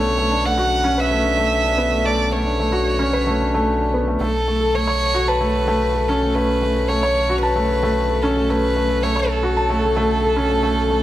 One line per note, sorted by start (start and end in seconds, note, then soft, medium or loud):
0.00 4.17 B1 medium
0.00 0.18 A3 medium
0.00 1.78 B3 medium
0.00 0.84 C#4 medium
0.00 0.31 D4 medium
0.00 0.58 F#4 medium
0.00 0.98 B4 medium
0.00 0.47 C#5 medium
0.18 0.31 A3 medium
0.31 0.44 D4 medium
0.44 0.57 A3 medium
0.44 1.01 F#5 medium
0.58 0.66 F#4 medium
0.84 0.97 C#4 medium
0.98 1.06 B4 medium
0.98 2.07 E5 loud
1.11 1.24 A3 medium
1.24 1.32 D4 medium
1.37 1.51 A3 medium
1.64 1.78 D4 medium
1.78 1.91 B3 medium
1.91 2.03 A3 medium
2.05 2.13 A3 medium
2.05 2.34 D5 medium
2.32 2.45 A3 medium
2.32 3.93 C#5 medium
2.45 2.58 D4 medium
2.60 2.72 A3 medium
2.72 2.80 F#4 medium
2.99 3.12 C#4 medium
3.13 3.21 B4 medium
3.27 3.39 A3 medium
3.40 3.47 D4 medium
3.54 3.66 A3 medium
3.81 3.93 D4 medium
3.94 4.06 B3 medium
4.08 4.19 A3 medium
4.20 11.03 B1 medium
4.20 4.28 A3 medium
4.20 4.76 A4 medium
4.48 4.60 A3 medium
4.61 4.73 A4 medium
4.74 4.87 A3 medium
4.74 5.30 C#5 loud
4.88 4.95 C#5 medium
5.14 5.27 F#4 medium
5.28 6.10 B4 medium
5.28 5.35 A5 medium
5.41 5.53 A3 medium
5.55 5.62 A4 medium
5.68 5.80 A3 medium
5.95 6.07 A4 medium
6.08 6.21 C#4 medium
6.08 6.36 A4 medium
6.23 6.34 A3 medium
6.35 6.43 A3 medium
6.35 6.90 B4 medium
6.62 6.74 A3 medium
6.76 6.88 A4 medium
6.88 7.01 A3 medium
6.88 7.41 C#5 medium
7.03 7.10 C#5 medium
7.29 7.41 F#4 medium
7.41 8.24 B4 medium
7.41 7.50 A5 medium
7.56 7.68 A3 medium
7.70 7.76 A4 medium
7.83 7.95 A3 medium
8.10 8.22 A4 medium
8.22 8.35 C#4 medium
8.22 8.51 A4 medium
8.37 8.48 A3 medium
8.50 8.57 A3 medium
8.50 9.04 B4 medium
8.76 8.89 A3 medium
8.90 9.02 A4 medium
9.03 9.15 A3 medium
9.03 9.31 C#5 medium
9.16 9.23 C#5 medium
9.29 11.03 A4 medium
9.43 9.55 F#4 medium
9.57 9.64 A5 medium
9.70 9.82 A3 medium
9.84 9.91 A4 medium
9.97 10.09 A3 medium
10.23 10.36 A4 medium
10.36 10.49 C#4 medium
10.50 10.61 A3 medium
10.63 10.70 A3 medium
10.90 11.02 A3 medium